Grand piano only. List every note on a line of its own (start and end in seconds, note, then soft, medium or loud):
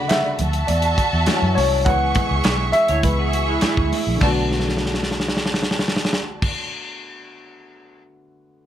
0.00 0.35 C#3 medium
0.00 0.35 D3 medium
0.00 0.35 A3 soft
0.00 0.41 F#5 medium
0.08 0.64 E5 medium
0.67 1.59 D5 medium
1.27 1.83 E3 medium
1.27 1.83 F#3 medium
1.27 1.83 C#4 medium
1.55 1.86 C#5 medium
1.85 2.25 E3 medium
1.85 2.25 G#3 medium
1.85 2.25 B3 medium
1.85 2.40 F#5 loud
2.72 3.58 E5 loud
3.03 4.17 E3 medium
3.03 4.17 G#3 soft
3.03 4.18 B3 medium
4.16 6.47 D3 medium
4.16 6.49 A3 medium
4.23 6.51 B3 medium
4.23 6.52 F#4 medium